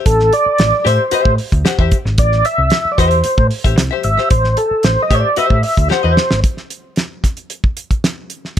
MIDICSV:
0, 0, Header, 1, 6, 480
1, 0, Start_track
1, 0, Tempo, 531915
1, 54, Time_signature, 4, 2, 24, 8
1, 7754, End_track
2, 0, Start_track
2, 0, Title_t, "Tonewheel organ"
2, 0, Program_c, 0, 16
2, 53, Note_on_c, 0, 69, 97
2, 300, Note_off_c, 0, 69, 0
2, 301, Note_on_c, 0, 74, 127
2, 781, Note_on_c, 0, 72, 96
2, 790, Note_off_c, 0, 74, 0
2, 1222, Note_off_c, 0, 72, 0
2, 1976, Note_on_c, 0, 74, 106
2, 2213, Note_on_c, 0, 76, 127
2, 2220, Note_off_c, 0, 74, 0
2, 2631, Note_on_c, 0, 74, 67
2, 2639, Note_off_c, 0, 76, 0
2, 2688, Note_on_c, 0, 72, 96
2, 2692, Note_off_c, 0, 74, 0
2, 3134, Note_off_c, 0, 72, 0
2, 3648, Note_on_c, 0, 76, 103
2, 3870, Note_off_c, 0, 76, 0
2, 3888, Note_on_c, 0, 72, 106
2, 4127, Note_on_c, 0, 69, 97
2, 4134, Note_off_c, 0, 72, 0
2, 4373, Note_off_c, 0, 69, 0
2, 4373, Note_on_c, 0, 72, 94
2, 4534, Note_off_c, 0, 72, 0
2, 4534, Note_on_c, 0, 75, 104
2, 4643, Note_on_c, 0, 73, 69
2, 4653, Note_off_c, 0, 75, 0
2, 4684, Note_off_c, 0, 73, 0
2, 4691, Note_on_c, 0, 74, 94
2, 4850, Note_on_c, 0, 76, 110
2, 4853, Note_off_c, 0, 74, 0
2, 5078, Note_off_c, 0, 76, 0
2, 5088, Note_on_c, 0, 76, 85
2, 5310, Note_off_c, 0, 76, 0
2, 5334, Note_on_c, 0, 72, 84
2, 5778, Note_off_c, 0, 72, 0
2, 7754, End_track
3, 0, Start_track
3, 0, Title_t, "Hollow-body jazz guitar"
3, 0, Program_c, 1, 26
3, 764, Note_on_c, 1, 67, 89
3, 775, Note_on_c, 1, 72, 95
3, 784, Note_on_c, 1, 76, 106
3, 921, Note_off_c, 1, 67, 0
3, 926, Note_off_c, 1, 72, 0
3, 930, Note_off_c, 1, 76, 0
3, 1007, Note_on_c, 1, 67, 90
3, 1016, Note_on_c, 1, 72, 93
3, 1027, Note_on_c, 1, 76, 98
3, 1191, Note_off_c, 1, 67, 0
3, 1196, Note_off_c, 1, 72, 0
3, 1201, Note_off_c, 1, 76, 0
3, 1487, Note_on_c, 1, 67, 70
3, 1500, Note_on_c, 1, 72, 75
3, 1504, Note_on_c, 1, 78, 84
3, 1608, Note_off_c, 1, 67, 0
3, 1609, Note_off_c, 1, 72, 0
3, 1609, Note_off_c, 1, 78, 0
3, 1612, Note_on_c, 1, 76, 82
3, 1620, Note_on_c, 1, 72, 82
3, 1631, Note_on_c, 1, 67, 77
3, 1764, Note_off_c, 1, 76, 0
3, 1768, Note_off_c, 1, 72, 0
3, 1773, Note_off_c, 1, 67, 0
3, 2691, Note_on_c, 1, 67, 90
3, 2699, Note_on_c, 1, 72, 97
3, 2708, Note_on_c, 1, 76, 99
3, 2872, Note_off_c, 1, 67, 0
3, 2875, Note_off_c, 1, 72, 0
3, 2880, Note_off_c, 1, 76, 0
3, 3287, Note_on_c, 1, 76, 82
3, 3296, Note_on_c, 1, 72, 74
3, 3304, Note_on_c, 1, 67, 75
3, 3439, Note_off_c, 1, 76, 0
3, 3444, Note_off_c, 1, 72, 0
3, 3448, Note_off_c, 1, 67, 0
3, 3526, Note_on_c, 1, 76, 85
3, 3538, Note_on_c, 1, 72, 79
3, 3545, Note_on_c, 1, 67, 74
3, 3678, Note_off_c, 1, 76, 0
3, 3685, Note_off_c, 1, 72, 0
3, 3688, Note_off_c, 1, 67, 0
3, 3767, Note_on_c, 1, 76, 58
3, 3777, Note_on_c, 1, 72, 63
3, 3784, Note_on_c, 1, 67, 49
3, 3886, Note_off_c, 1, 76, 0
3, 3891, Note_off_c, 1, 72, 0
3, 3894, Note_off_c, 1, 67, 0
3, 4607, Note_on_c, 1, 67, 86
3, 4614, Note_on_c, 1, 72, 90
3, 4622, Note_on_c, 1, 76, 102
3, 4759, Note_off_c, 1, 67, 0
3, 4762, Note_off_c, 1, 72, 0
3, 4766, Note_off_c, 1, 76, 0
3, 4845, Note_on_c, 1, 67, 89
3, 4854, Note_on_c, 1, 72, 90
3, 4861, Note_on_c, 1, 76, 94
3, 5027, Note_off_c, 1, 67, 0
3, 5032, Note_off_c, 1, 72, 0
3, 5036, Note_off_c, 1, 76, 0
3, 5323, Note_on_c, 1, 67, 71
3, 5335, Note_on_c, 1, 72, 76
3, 5343, Note_on_c, 1, 78, 88
3, 5437, Note_off_c, 1, 78, 0
3, 5441, Note_on_c, 1, 76, 83
3, 5442, Note_off_c, 1, 72, 0
3, 5444, Note_off_c, 1, 67, 0
3, 5453, Note_on_c, 1, 72, 73
3, 5457, Note_on_c, 1, 67, 61
3, 5626, Note_off_c, 1, 76, 0
3, 5632, Note_off_c, 1, 72, 0
3, 5634, Note_off_c, 1, 67, 0
3, 7754, End_track
4, 0, Start_track
4, 0, Title_t, "Picked electric bass"
4, 0, Program_c, 2, 34
4, 55, Note_on_c, 2, 33, 106
4, 260, Note_off_c, 2, 33, 0
4, 536, Note_on_c, 2, 33, 89
4, 637, Note_off_c, 2, 33, 0
4, 774, Note_on_c, 2, 45, 101
4, 876, Note_off_c, 2, 45, 0
4, 1133, Note_on_c, 2, 45, 101
4, 1235, Note_off_c, 2, 45, 0
4, 1376, Note_on_c, 2, 38, 89
4, 1476, Note_off_c, 2, 38, 0
4, 1615, Note_on_c, 2, 40, 78
4, 1716, Note_off_c, 2, 40, 0
4, 1852, Note_on_c, 2, 32, 96
4, 1954, Note_off_c, 2, 32, 0
4, 1971, Note_on_c, 2, 33, 110
4, 2176, Note_off_c, 2, 33, 0
4, 2330, Note_on_c, 2, 36, 84
4, 2432, Note_off_c, 2, 36, 0
4, 2693, Note_on_c, 2, 40, 98
4, 2896, Note_off_c, 2, 40, 0
4, 3048, Note_on_c, 2, 45, 100
4, 3150, Note_off_c, 2, 45, 0
4, 3291, Note_on_c, 2, 33, 91
4, 3392, Note_off_c, 2, 33, 0
4, 3407, Note_on_c, 2, 36, 96
4, 3510, Note_off_c, 2, 36, 0
4, 3649, Note_on_c, 2, 32, 89
4, 3751, Note_off_c, 2, 32, 0
4, 3889, Note_on_c, 2, 33, 112
4, 4093, Note_off_c, 2, 33, 0
4, 4370, Note_on_c, 2, 33, 91
4, 4470, Note_off_c, 2, 33, 0
4, 4607, Note_on_c, 2, 45, 107
4, 4709, Note_off_c, 2, 45, 0
4, 4968, Note_on_c, 2, 45, 92
4, 5069, Note_off_c, 2, 45, 0
4, 5212, Note_on_c, 2, 38, 89
4, 5312, Note_off_c, 2, 38, 0
4, 5451, Note_on_c, 2, 40, 89
4, 5552, Note_off_c, 2, 40, 0
4, 5696, Note_on_c, 2, 32, 94
4, 5795, Note_off_c, 2, 32, 0
4, 7754, End_track
5, 0, Start_track
5, 0, Title_t, "Muted picked electric bass strokes"
5, 416, Note_on_c, 9, 29, 45
5, 506, Note_off_c, 9, 29, 0
5, 1013, Note_on_c, 9, 29, 45
5, 1104, Note_off_c, 9, 29, 0
5, 2572, Note_on_c, 9, 29, 50
5, 2662, Note_off_c, 9, 29, 0
5, 2932, Note_on_c, 9, 29, 45
5, 3022, Note_off_c, 9, 29, 0
5, 4251, Note_on_c, 9, 29, 51
5, 4341, Note_off_c, 9, 29, 0
5, 4851, Note_on_c, 9, 29, 45
5, 4941, Note_off_c, 9, 29, 0
5, 5335, Note_on_c, 9, 29, 47
5, 5425, Note_off_c, 9, 29, 0
5, 7754, End_track
6, 0, Start_track
6, 0, Title_t, "Drums"
6, 52, Note_on_c, 9, 42, 106
6, 53, Note_on_c, 9, 36, 119
6, 142, Note_off_c, 9, 42, 0
6, 143, Note_off_c, 9, 36, 0
6, 177, Note_on_c, 9, 38, 33
6, 267, Note_off_c, 9, 38, 0
6, 295, Note_on_c, 9, 42, 72
6, 385, Note_off_c, 9, 42, 0
6, 527, Note_on_c, 9, 42, 70
6, 540, Note_on_c, 9, 38, 107
6, 618, Note_off_c, 9, 42, 0
6, 630, Note_off_c, 9, 38, 0
6, 777, Note_on_c, 9, 38, 40
6, 782, Note_on_c, 9, 42, 76
6, 867, Note_off_c, 9, 38, 0
6, 872, Note_off_c, 9, 42, 0
6, 1005, Note_on_c, 9, 42, 92
6, 1096, Note_off_c, 9, 42, 0
6, 1132, Note_on_c, 9, 36, 103
6, 1222, Note_off_c, 9, 36, 0
6, 1248, Note_on_c, 9, 46, 76
6, 1338, Note_off_c, 9, 46, 0
6, 1374, Note_on_c, 9, 36, 92
6, 1379, Note_on_c, 9, 42, 54
6, 1464, Note_off_c, 9, 36, 0
6, 1469, Note_off_c, 9, 42, 0
6, 1493, Note_on_c, 9, 38, 104
6, 1496, Note_on_c, 9, 42, 85
6, 1584, Note_off_c, 9, 38, 0
6, 1587, Note_off_c, 9, 42, 0
6, 1612, Note_on_c, 9, 36, 97
6, 1702, Note_off_c, 9, 36, 0
6, 1727, Note_on_c, 9, 42, 69
6, 1731, Note_on_c, 9, 36, 94
6, 1818, Note_off_c, 9, 42, 0
6, 1821, Note_off_c, 9, 36, 0
6, 1857, Note_on_c, 9, 38, 37
6, 1948, Note_off_c, 9, 38, 0
6, 1966, Note_on_c, 9, 42, 99
6, 1970, Note_on_c, 9, 36, 126
6, 2056, Note_off_c, 9, 42, 0
6, 2060, Note_off_c, 9, 36, 0
6, 2092, Note_on_c, 9, 38, 29
6, 2183, Note_off_c, 9, 38, 0
6, 2209, Note_on_c, 9, 42, 71
6, 2300, Note_off_c, 9, 42, 0
6, 2439, Note_on_c, 9, 42, 76
6, 2451, Note_on_c, 9, 38, 97
6, 2529, Note_off_c, 9, 42, 0
6, 2541, Note_off_c, 9, 38, 0
6, 2690, Note_on_c, 9, 36, 84
6, 2691, Note_on_c, 9, 38, 37
6, 2696, Note_on_c, 9, 42, 85
6, 2780, Note_off_c, 9, 36, 0
6, 2781, Note_off_c, 9, 38, 0
6, 2786, Note_off_c, 9, 42, 0
6, 2805, Note_on_c, 9, 42, 47
6, 2895, Note_off_c, 9, 42, 0
6, 2921, Note_on_c, 9, 42, 99
6, 3011, Note_off_c, 9, 42, 0
6, 3048, Note_on_c, 9, 36, 102
6, 3139, Note_off_c, 9, 36, 0
6, 3164, Note_on_c, 9, 46, 74
6, 3254, Note_off_c, 9, 46, 0
6, 3290, Note_on_c, 9, 36, 92
6, 3295, Note_on_c, 9, 42, 55
6, 3380, Note_off_c, 9, 36, 0
6, 3386, Note_off_c, 9, 42, 0
6, 3408, Note_on_c, 9, 38, 119
6, 3411, Note_on_c, 9, 42, 91
6, 3498, Note_off_c, 9, 38, 0
6, 3501, Note_off_c, 9, 42, 0
6, 3640, Note_on_c, 9, 42, 65
6, 3731, Note_off_c, 9, 42, 0
6, 3775, Note_on_c, 9, 38, 33
6, 3865, Note_off_c, 9, 38, 0
6, 3885, Note_on_c, 9, 42, 103
6, 3887, Note_on_c, 9, 36, 127
6, 3975, Note_off_c, 9, 42, 0
6, 3977, Note_off_c, 9, 36, 0
6, 4008, Note_on_c, 9, 38, 32
6, 4099, Note_off_c, 9, 38, 0
6, 4124, Note_on_c, 9, 42, 80
6, 4214, Note_off_c, 9, 42, 0
6, 4359, Note_on_c, 9, 42, 71
6, 4371, Note_on_c, 9, 38, 108
6, 4449, Note_off_c, 9, 42, 0
6, 4462, Note_off_c, 9, 38, 0
6, 4608, Note_on_c, 9, 36, 95
6, 4614, Note_on_c, 9, 42, 76
6, 4698, Note_off_c, 9, 36, 0
6, 4704, Note_off_c, 9, 42, 0
6, 4841, Note_on_c, 9, 42, 89
6, 4931, Note_off_c, 9, 42, 0
6, 4967, Note_on_c, 9, 36, 99
6, 5057, Note_off_c, 9, 36, 0
6, 5082, Note_on_c, 9, 46, 76
6, 5173, Note_off_c, 9, 46, 0
6, 5210, Note_on_c, 9, 36, 86
6, 5216, Note_on_c, 9, 42, 50
6, 5301, Note_off_c, 9, 36, 0
6, 5306, Note_off_c, 9, 42, 0
6, 5333, Note_on_c, 9, 38, 66
6, 5423, Note_off_c, 9, 38, 0
6, 5570, Note_on_c, 9, 38, 88
6, 5660, Note_off_c, 9, 38, 0
6, 5691, Note_on_c, 9, 38, 88
6, 5781, Note_off_c, 9, 38, 0
6, 5809, Note_on_c, 9, 36, 111
6, 5809, Note_on_c, 9, 42, 84
6, 5900, Note_off_c, 9, 36, 0
6, 5900, Note_off_c, 9, 42, 0
6, 5930, Note_on_c, 9, 38, 28
6, 6021, Note_off_c, 9, 38, 0
6, 6050, Note_on_c, 9, 42, 64
6, 6140, Note_off_c, 9, 42, 0
6, 6281, Note_on_c, 9, 42, 63
6, 6293, Note_on_c, 9, 38, 80
6, 6371, Note_off_c, 9, 42, 0
6, 6383, Note_off_c, 9, 38, 0
6, 6531, Note_on_c, 9, 36, 80
6, 6532, Note_on_c, 9, 38, 31
6, 6537, Note_on_c, 9, 42, 64
6, 6621, Note_off_c, 9, 36, 0
6, 6622, Note_off_c, 9, 38, 0
6, 6627, Note_off_c, 9, 42, 0
6, 6649, Note_on_c, 9, 42, 42
6, 6739, Note_off_c, 9, 42, 0
6, 6767, Note_on_c, 9, 42, 81
6, 6857, Note_off_c, 9, 42, 0
6, 6892, Note_on_c, 9, 36, 92
6, 6983, Note_off_c, 9, 36, 0
6, 7009, Note_on_c, 9, 42, 68
6, 7099, Note_off_c, 9, 42, 0
6, 7135, Note_on_c, 9, 36, 79
6, 7138, Note_on_c, 9, 42, 45
6, 7225, Note_off_c, 9, 36, 0
6, 7228, Note_off_c, 9, 42, 0
6, 7256, Note_on_c, 9, 38, 92
6, 7259, Note_on_c, 9, 42, 83
6, 7346, Note_off_c, 9, 38, 0
6, 7349, Note_off_c, 9, 42, 0
6, 7489, Note_on_c, 9, 42, 64
6, 7579, Note_off_c, 9, 42, 0
6, 7623, Note_on_c, 9, 38, 30
6, 7714, Note_off_c, 9, 38, 0
6, 7754, End_track
0, 0, End_of_file